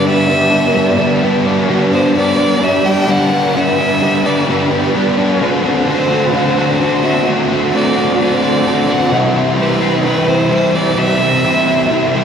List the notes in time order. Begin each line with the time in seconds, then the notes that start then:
Already playing: G2 D3
0.04 G3 B3 D4 E5
0.27 D3 G3 B3 D4
0.50 G3 B3 D4
0.74 G2 D3 G3 B3 D4
0.97 G3 B3 D4
1.21 D3 G3 B3 D4
1.45 G3 B3 D4
1.68 G2 D3 G3 B3 D4
1.91 G3 B3 D4 C5
2.14 D3 G3 B3 D4 D5
2.37 G3 B3 D4
2.60 G2 D3 G3 B3 D4 E5
2.83 G3 B3 D4 G5
3.07 D3 G3 B3 D4 F#5
3.29 G3 B3 D4
3.53 G2 D3 G3 B3 D4
3.58 E5
3.77 G3 B3 D4
4.01 D3 G3 B3 D4
4.24 G3 B3 D4 D5
4.48 G2 D3 G3 B3 D4 B4
4.70 G3 B3 D4
4.94 D3 G3 B3 D4
5.17 G3 B3 D4
5.40 D3 A3 C4 F#4
5.63 A3 C4 F#4
5.87 D3 A3 C4 F#4 C5
6.10 A3 C4 F#4
6.33 D3 A3 C4 F#4 C5
6.56 A3 C4 F#4
6.80 D3 A3 C4 F#4
7.03 A3 C4 F#4 E5
7.27 D3 A3 C4 F#4
7.51 A3 C4 F#4
7.73 D3 A3 C4 F#4 D5
7.96 A3 C4 F#4
8.18 D3 A3 C4 D5
8.22 F#4
8.41 A3 C4 F#4
8.65 D3 A3 C4 F#4
8.88 A3 C4 F#4 F#5
9.11 C3 E3 G3 C4 E4
9.34 G3 C4 E4
9.57 E3 G3 C4 E4 B4
9.79 G3 C4 E4
10.04 C3 E3 G3 C4 E4 B4
10.27 G3 C4 E4 C5
10.50 E3 G3 C4 E4 C5
10.73 G3 C4 E4 D5
10.95 C3 E3 G3 C4 E4 E5
11.19 G3 C4 E4
11.43 E3 G3 C4 E4
11.67 G3 C4 E4
11.89 C3 E3 G3 C4 E4
12.14 G3 C4 E4